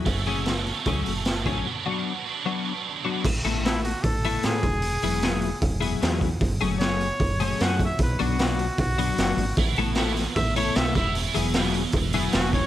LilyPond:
<<
  \new Staff \with { instrumentName = "Trumpet" } { \time 4/4 \key a \major \tempo 4 = 152 r1 | r1 | r4 e'8 fis'8 a'4 gis'4~ | gis'2 r2 |
r4 cis''4. cis''8 fis''8 e''8 | b'8 fis'4. fis'2 | r2 e''8 cis''8 e''8 e''8 | r2. fis'8 cis''8 | }
  \new Staff \with { instrumentName = "Clean electric guitar" } { \time 4/4 \key a \major r8 <fis a cis' gis'>8 r4 <fis a cis' gis'>8 r4 <fis a cis' gis'>8 | r8 <fis b d' fis'>8 r4 <fis b d' fis'>8 r4 <fis b d' fis'>8 | r8 <a b e' a'>8 <a b e' a'>8 r4 <a b e' a'>8 <a b e' a'>8 r8 | r8 <fis b e' gis'>8 <fis b e' gis'>8 r4 <fis b e' gis'>8 <fis b e' gis'>8 r8 |
r8 <fis a cis' gis'>8 <fis a cis' gis'>8 r4 <fis a cis' gis'>8 <fis a cis' gis'>8 r8 | r8 <fis b d' fis'>8 <fis b d' fis'>8 r4 <fis b d' fis'>8 <fis b d' fis'>8 r8 | r8 <a b e' a'>8 <a b e' a'>8 r4 <a b e' a'>8 <a b e' a'>8 r8 | r8 <fis b e' gis'>8 <fis b e' gis'>8 r4 <fis b e' gis'>8 <fis b e' gis'>8 r8 | }
  \new Staff \with { instrumentName = "Distorted electric guitar" } { \time 4/4 \key a \major <fis a cis' a'>4. <fis a cis' a'>2~ <fis a cis' a'>8 | <fis b d' fis'>4. <fis b d' fis'>2~ <fis b d' fis'>8 | r1 | r1 |
r1 | r1 | <e b e'>8 <e b>8 <e b e'>8 <e b>8 <e b>8 <e b e'>8 <e b>8 <e b e'>8 | <e b e'>8 <e b>8 <e b e'>8 <e b>8 <e b>8 <e b e'>8 <e b>8 <e b>8 | }
  \new Staff \with { instrumentName = "Fretless electric bass" } { \clef bass \time 4/4 \key a \major fis,,2 cis,8 fis,,4 a,,8 | r1 | a,,8 a,,4. a,,4 a,8 e,,8~ | e,,8 e,,4. e,,4 e,4 |
fis,,8 fis,,4. fis,,4 fis,4 | b,,8 b,,4. b,,4 fis,,8 gis,,8 | a,,8 a,,4. a,,4 b,,8 e,,8~ | e,,8 e,,4. e,,4 e,,4 | }
  \new DrumStaff \with { instrumentName = "Drums" } \drummode { \time 4/4 <hho bd>8 hho8 <hho sn>8 hho8 <hho bd>8 hho8 <hho sn>8 <hho bd>8 | r4 r4 r4 r4 | <cymc bd>8 hho8 <hho sn>8 hho8 <hho bd>8 hho8 <hho sn>8 <hho bd>8 | hho8 hho8 <hho sn>8 hho8 <hho bd>8 hho8 <hho sn>8 <hho bd>8 |
<hho bd>8 hho8 <hho sn>8 hho8 <hho bd>8 hho8 <hho sn>8 <hho bd>8 | <hho bd>8 hho8 <hho sn>8 hho8 <hho bd>8 hho8 <hho sn>8 hho8 | <hho bd>8 hho8 <hho sn>8 <hho sn>8 <hho bd>8 hho8 <hho sn>8 <hho bd>8 | hho8 hho8 <hho sn>8 hho8 <hho bd>8 hho8 <hho sn>8 <hho bd>8 | }
>>